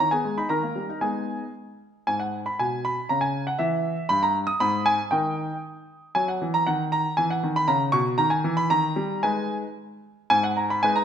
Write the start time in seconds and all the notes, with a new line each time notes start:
0.00 D#3 A#5
0.11 B3 G#4 G#5
0.25 G#3
0.37 D#4 B5
0.49 D#3 A#4 A#5
0.63 A#3
0.76 G3
0.89 D#4
1.01 G#3 B3 D#4 G#4 G#5
2.07 G#2 G#5
2.20 F#5
2.46 B5
2.59 B2 G#5
2.85 B5
3.09 C#3 A#5
3.21 G#5
3.47 F#5
3.59 E3 E5
4.09 G2 B5
4.23 A#5
4.47 D#6
4.60 G#2 B5
4.86 G#5
5.11 D#3 D#4 A#4 G5
6.15 F#3 G#5
6.28 F#5
6.42 E3
6.54 A#5
6.67 D#3 F#5
6.92 A#5
7.17 E3 G#5
7.30 F#5
7.43 D#3
7.56 B5
7.68 C#3 A#5
7.92 B2 C#6
8.18 D#3 A#5
8.30 G#5
8.44 E3
8.57 B5
8.70 D#3 A#5
8.96 G3
9.23 G#3 D#4 B4 G#5
10.30 G#2 G#5
10.44 F#5
10.57 A#5
10.70 B5
10.83 G#3 D#4 B4 G#5
10.96 A#5